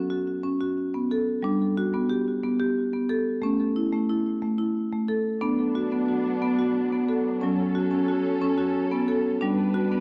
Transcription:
0, 0, Header, 1, 3, 480
1, 0, Start_track
1, 0, Tempo, 665927
1, 1033, Time_signature, 6, 3, 24, 8
1, 7209, End_track
2, 0, Start_track
2, 0, Title_t, "String section"
2, 0, Program_c, 0, 48
2, 3901, Note_on_c, 0, 54, 60
2, 3903, Note_on_c, 0, 59, 60
2, 3903, Note_on_c, 0, 62, 66
2, 5332, Note_off_c, 0, 59, 0
2, 5332, Note_off_c, 0, 62, 0
2, 5346, Note_on_c, 0, 61, 59
2, 5347, Note_on_c, 0, 69, 70
2, 6758, Note_off_c, 0, 54, 0
2, 6775, Note_off_c, 0, 61, 0
2, 6776, Note_off_c, 0, 69, 0
2, 6782, Note_on_c, 0, 55, 64
2, 6784, Note_on_c, 0, 62, 59
2, 6784, Note_on_c, 0, 71, 69
2, 7209, Note_off_c, 0, 55, 0
2, 7209, Note_off_c, 0, 62, 0
2, 7209, Note_off_c, 0, 71, 0
2, 7209, End_track
3, 0, Start_track
3, 0, Title_t, "Marimba"
3, 0, Program_c, 1, 12
3, 0, Note_on_c, 1, 54, 64
3, 0, Note_on_c, 1, 61, 50
3, 73, Note_off_c, 1, 61, 0
3, 73, Note_on_c, 1, 66, 56
3, 313, Note_off_c, 1, 66, 0
3, 313, Note_on_c, 1, 61, 63
3, 433, Note_off_c, 1, 61, 0
3, 437, Note_on_c, 1, 66, 58
3, 675, Note_off_c, 1, 66, 0
3, 679, Note_on_c, 1, 59, 55
3, 796, Note_off_c, 1, 59, 0
3, 802, Note_on_c, 1, 69, 61
3, 1006, Note_off_c, 1, 54, 0
3, 1027, Note_on_c, 1, 55, 66
3, 1037, Note_off_c, 1, 69, 0
3, 1039, Note_on_c, 1, 62, 70
3, 1276, Note_off_c, 1, 62, 0
3, 1280, Note_on_c, 1, 66, 63
3, 1395, Note_on_c, 1, 59, 55
3, 1396, Note_off_c, 1, 66, 0
3, 1510, Note_on_c, 1, 67, 60
3, 1514, Note_off_c, 1, 59, 0
3, 1751, Note_off_c, 1, 67, 0
3, 1756, Note_on_c, 1, 59, 64
3, 1872, Note_on_c, 1, 67, 60
3, 1874, Note_off_c, 1, 59, 0
3, 2111, Note_off_c, 1, 67, 0
3, 2114, Note_on_c, 1, 59, 52
3, 2230, Note_on_c, 1, 69, 61
3, 2232, Note_off_c, 1, 59, 0
3, 2439, Note_off_c, 1, 55, 0
3, 2463, Note_on_c, 1, 57, 61
3, 2470, Note_off_c, 1, 69, 0
3, 2475, Note_on_c, 1, 61, 68
3, 2711, Note_on_c, 1, 64, 56
3, 2713, Note_off_c, 1, 61, 0
3, 2821, Note_off_c, 1, 57, 0
3, 2829, Note_on_c, 1, 57, 54
3, 2831, Note_off_c, 1, 64, 0
3, 2950, Note_off_c, 1, 57, 0
3, 2951, Note_on_c, 1, 64, 56
3, 3187, Note_on_c, 1, 57, 63
3, 3191, Note_off_c, 1, 64, 0
3, 3304, Note_on_c, 1, 64, 58
3, 3308, Note_off_c, 1, 57, 0
3, 3547, Note_off_c, 1, 64, 0
3, 3550, Note_on_c, 1, 57, 51
3, 3664, Note_on_c, 1, 69, 60
3, 3670, Note_off_c, 1, 57, 0
3, 3901, Note_on_c, 1, 62, 65
3, 3902, Note_on_c, 1, 59, 63
3, 3907, Note_off_c, 1, 69, 0
3, 4145, Note_off_c, 1, 62, 0
3, 4146, Note_on_c, 1, 66, 57
3, 4260, Note_off_c, 1, 59, 0
3, 4268, Note_off_c, 1, 66, 0
3, 4269, Note_on_c, 1, 59, 55
3, 4385, Note_on_c, 1, 66, 55
3, 4389, Note_off_c, 1, 59, 0
3, 4627, Note_off_c, 1, 66, 0
3, 4628, Note_on_c, 1, 59, 66
3, 4748, Note_on_c, 1, 66, 58
3, 4749, Note_off_c, 1, 59, 0
3, 4989, Note_off_c, 1, 66, 0
3, 4990, Note_on_c, 1, 59, 54
3, 5107, Note_on_c, 1, 69, 59
3, 5110, Note_off_c, 1, 59, 0
3, 5343, Note_on_c, 1, 61, 67
3, 5348, Note_off_c, 1, 69, 0
3, 5357, Note_on_c, 1, 54, 64
3, 5586, Note_on_c, 1, 66, 61
3, 5587, Note_off_c, 1, 61, 0
3, 5703, Note_on_c, 1, 61, 54
3, 5708, Note_off_c, 1, 66, 0
3, 5826, Note_on_c, 1, 66, 59
3, 5827, Note_off_c, 1, 61, 0
3, 6065, Note_on_c, 1, 61, 68
3, 6068, Note_off_c, 1, 66, 0
3, 6183, Note_on_c, 1, 66, 60
3, 6188, Note_off_c, 1, 61, 0
3, 6426, Note_on_c, 1, 59, 60
3, 6427, Note_off_c, 1, 66, 0
3, 6545, Note_on_c, 1, 69, 60
3, 6548, Note_off_c, 1, 59, 0
3, 6766, Note_off_c, 1, 54, 0
3, 6783, Note_on_c, 1, 62, 65
3, 6788, Note_off_c, 1, 69, 0
3, 6791, Note_on_c, 1, 55, 69
3, 7023, Note_on_c, 1, 66, 67
3, 7028, Note_off_c, 1, 62, 0
3, 7147, Note_off_c, 1, 66, 0
3, 7147, Note_on_c, 1, 59, 55
3, 7209, Note_off_c, 1, 55, 0
3, 7209, Note_off_c, 1, 59, 0
3, 7209, End_track
0, 0, End_of_file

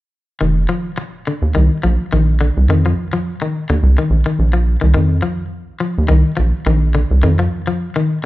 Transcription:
0, 0, Header, 1, 4, 480
1, 0, Start_track
1, 0, Tempo, 568720
1, 356, Time_signature, 4, 2, 24, 8
1, 6967, End_track
2, 0, Start_track
2, 0, Title_t, "Clean electric guitar"
2, 0, Program_c, 0, 27
2, 344, Note_on_c, 0, 51, 67
2, 527, Note_off_c, 0, 51, 0
2, 582, Note_on_c, 0, 53, 64
2, 766, Note_off_c, 0, 53, 0
2, 1074, Note_on_c, 0, 50, 58
2, 1254, Note_off_c, 0, 50, 0
2, 1307, Note_on_c, 0, 51, 69
2, 1489, Note_off_c, 0, 51, 0
2, 1548, Note_on_c, 0, 53, 61
2, 1730, Note_off_c, 0, 53, 0
2, 1794, Note_on_c, 0, 51, 62
2, 1973, Note_off_c, 0, 51, 0
2, 2031, Note_on_c, 0, 50, 67
2, 2211, Note_off_c, 0, 50, 0
2, 2279, Note_on_c, 0, 51, 71
2, 2375, Note_off_c, 0, 51, 0
2, 2411, Note_on_c, 0, 53, 55
2, 2588, Note_off_c, 0, 53, 0
2, 2642, Note_on_c, 0, 53, 65
2, 2823, Note_off_c, 0, 53, 0
2, 2884, Note_on_c, 0, 51, 60
2, 3064, Note_off_c, 0, 51, 0
2, 3121, Note_on_c, 0, 50, 65
2, 3302, Note_off_c, 0, 50, 0
2, 3362, Note_on_c, 0, 51, 63
2, 3542, Note_off_c, 0, 51, 0
2, 3595, Note_on_c, 0, 51, 64
2, 3778, Note_off_c, 0, 51, 0
2, 3826, Note_on_c, 0, 53, 64
2, 4013, Note_off_c, 0, 53, 0
2, 4062, Note_on_c, 0, 51, 60
2, 4153, Note_off_c, 0, 51, 0
2, 4172, Note_on_c, 0, 51, 78
2, 4360, Note_off_c, 0, 51, 0
2, 4409, Note_on_c, 0, 53, 72
2, 4598, Note_off_c, 0, 53, 0
2, 4898, Note_on_c, 0, 53, 63
2, 5083, Note_off_c, 0, 53, 0
2, 5135, Note_on_c, 0, 51, 78
2, 5322, Note_off_c, 0, 51, 0
2, 5374, Note_on_c, 0, 53, 64
2, 5561, Note_off_c, 0, 53, 0
2, 5626, Note_on_c, 0, 51, 68
2, 5808, Note_off_c, 0, 51, 0
2, 5863, Note_on_c, 0, 50, 70
2, 6047, Note_off_c, 0, 50, 0
2, 6104, Note_on_c, 0, 51, 73
2, 6206, Note_off_c, 0, 51, 0
2, 6238, Note_on_c, 0, 53, 61
2, 6420, Note_off_c, 0, 53, 0
2, 6477, Note_on_c, 0, 53, 63
2, 6659, Note_off_c, 0, 53, 0
2, 6718, Note_on_c, 0, 51, 66
2, 6900, Note_off_c, 0, 51, 0
2, 6967, End_track
3, 0, Start_track
3, 0, Title_t, "Analog synth bass"
3, 0, Program_c, 1, 38
3, 350, Note_on_c, 1, 29, 89
3, 557, Note_off_c, 1, 29, 0
3, 1199, Note_on_c, 1, 39, 81
3, 1295, Note_off_c, 1, 39, 0
3, 1317, Note_on_c, 1, 36, 88
3, 1428, Note_off_c, 1, 36, 0
3, 1556, Note_on_c, 1, 34, 80
3, 1668, Note_off_c, 1, 34, 0
3, 1799, Note_on_c, 1, 34, 88
3, 2114, Note_off_c, 1, 34, 0
3, 2169, Note_on_c, 1, 36, 81
3, 2261, Note_off_c, 1, 36, 0
3, 2270, Note_on_c, 1, 41, 87
3, 2477, Note_off_c, 1, 41, 0
3, 3121, Note_on_c, 1, 39, 82
3, 3217, Note_off_c, 1, 39, 0
3, 3233, Note_on_c, 1, 36, 90
3, 3345, Note_off_c, 1, 36, 0
3, 3462, Note_on_c, 1, 34, 80
3, 3579, Note_off_c, 1, 34, 0
3, 3704, Note_on_c, 1, 34, 89
3, 4025, Note_off_c, 1, 34, 0
3, 4079, Note_on_c, 1, 36, 84
3, 4175, Note_off_c, 1, 36, 0
3, 4189, Note_on_c, 1, 41, 90
3, 4397, Note_off_c, 1, 41, 0
3, 5047, Note_on_c, 1, 39, 82
3, 5140, Note_off_c, 1, 39, 0
3, 5145, Note_on_c, 1, 36, 92
3, 5261, Note_off_c, 1, 36, 0
3, 5394, Note_on_c, 1, 34, 83
3, 5506, Note_off_c, 1, 34, 0
3, 5622, Note_on_c, 1, 34, 91
3, 5944, Note_off_c, 1, 34, 0
3, 5998, Note_on_c, 1, 36, 84
3, 6095, Note_off_c, 1, 36, 0
3, 6108, Note_on_c, 1, 41, 96
3, 6316, Note_off_c, 1, 41, 0
3, 6967, End_track
4, 0, Start_track
4, 0, Title_t, "Muted clean electric guitar strokes"
4, 824, Note_on_c, 9, 29, 70
4, 908, Note_off_c, 9, 29, 0
4, 6967, End_track
0, 0, End_of_file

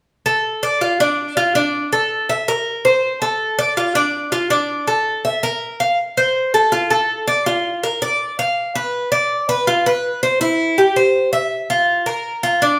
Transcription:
0, 0, Header, 1, 2, 480
1, 0, Start_track
1, 0, Key_signature, -1, "major"
1, 0, Tempo, 368777
1, 100, Time_signature, 4, 2, 24, 8
1, 16653, End_track
2, 0, Start_track
2, 0, Title_t, "Cuban tres"
2, 0, Program_c, 0, 25
2, 336, Note_on_c, 0, 69, 58
2, 805, Note_off_c, 0, 69, 0
2, 818, Note_on_c, 0, 74, 58
2, 1054, Note_off_c, 0, 74, 0
2, 1058, Note_on_c, 0, 65, 56
2, 1294, Note_off_c, 0, 65, 0
2, 1305, Note_on_c, 0, 62, 69
2, 1771, Note_off_c, 0, 62, 0
2, 1781, Note_on_c, 0, 65, 61
2, 2015, Note_off_c, 0, 65, 0
2, 2020, Note_on_c, 0, 62, 62
2, 2490, Note_off_c, 0, 62, 0
2, 2506, Note_on_c, 0, 69, 55
2, 2973, Note_off_c, 0, 69, 0
2, 2986, Note_on_c, 0, 76, 58
2, 3221, Note_off_c, 0, 76, 0
2, 3231, Note_on_c, 0, 70, 66
2, 3696, Note_off_c, 0, 70, 0
2, 3708, Note_on_c, 0, 72, 61
2, 4175, Note_off_c, 0, 72, 0
2, 4187, Note_on_c, 0, 69, 61
2, 4655, Note_off_c, 0, 69, 0
2, 4667, Note_on_c, 0, 74, 67
2, 4902, Note_off_c, 0, 74, 0
2, 4909, Note_on_c, 0, 65, 58
2, 5139, Note_off_c, 0, 65, 0
2, 5144, Note_on_c, 0, 62, 67
2, 5614, Note_off_c, 0, 62, 0
2, 5623, Note_on_c, 0, 65, 60
2, 5856, Note_off_c, 0, 65, 0
2, 5862, Note_on_c, 0, 62, 68
2, 6332, Note_off_c, 0, 62, 0
2, 6345, Note_on_c, 0, 69, 51
2, 6814, Note_off_c, 0, 69, 0
2, 6830, Note_on_c, 0, 76, 56
2, 7064, Note_off_c, 0, 76, 0
2, 7070, Note_on_c, 0, 70, 62
2, 7536, Note_off_c, 0, 70, 0
2, 7550, Note_on_c, 0, 77, 59
2, 7784, Note_off_c, 0, 77, 0
2, 8036, Note_on_c, 0, 72, 60
2, 8499, Note_off_c, 0, 72, 0
2, 8513, Note_on_c, 0, 69, 62
2, 8745, Note_off_c, 0, 69, 0
2, 8747, Note_on_c, 0, 65, 65
2, 8982, Note_off_c, 0, 65, 0
2, 8987, Note_on_c, 0, 69, 59
2, 9454, Note_off_c, 0, 69, 0
2, 9469, Note_on_c, 0, 74, 62
2, 9703, Note_off_c, 0, 74, 0
2, 9714, Note_on_c, 0, 65, 65
2, 10178, Note_off_c, 0, 65, 0
2, 10198, Note_on_c, 0, 70, 54
2, 10427, Note_off_c, 0, 70, 0
2, 10438, Note_on_c, 0, 74, 63
2, 10899, Note_off_c, 0, 74, 0
2, 10919, Note_on_c, 0, 77, 63
2, 11380, Note_off_c, 0, 77, 0
2, 11395, Note_on_c, 0, 71, 59
2, 11857, Note_off_c, 0, 71, 0
2, 11867, Note_on_c, 0, 74, 63
2, 12333, Note_off_c, 0, 74, 0
2, 12350, Note_on_c, 0, 71, 66
2, 12582, Note_off_c, 0, 71, 0
2, 12591, Note_on_c, 0, 65, 64
2, 12822, Note_off_c, 0, 65, 0
2, 12838, Note_on_c, 0, 71, 64
2, 13298, Note_off_c, 0, 71, 0
2, 13314, Note_on_c, 0, 72, 61
2, 13542, Note_off_c, 0, 72, 0
2, 13547, Note_on_c, 0, 64, 68
2, 14012, Note_off_c, 0, 64, 0
2, 14031, Note_on_c, 0, 67, 53
2, 14261, Note_off_c, 0, 67, 0
2, 14269, Note_on_c, 0, 72, 60
2, 14733, Note_off_c, 0, 72, 0
2, 14743, Note_on_c, 0, 76, 60
2, 15210, Note_off_c, 0, 76, 0
2, 15228, Note_on_c, 0, 65, 58
2, 15692, Note_off_c, 0, 65, 0
2, 15700, Note_on_c, 0, 70, 59
2, 16167, Note_off_c, 0, 70, 0
2, 16182, Note_on_c, 0, 65, 62
2, 16415, Note_off_c, 0, 65, 0
2, 16426, Note_on_c, 0, 62, 63
2, 16653, Note_off_c, 0, 62, 0
2, 16653, End_track
0, 0, End_of_file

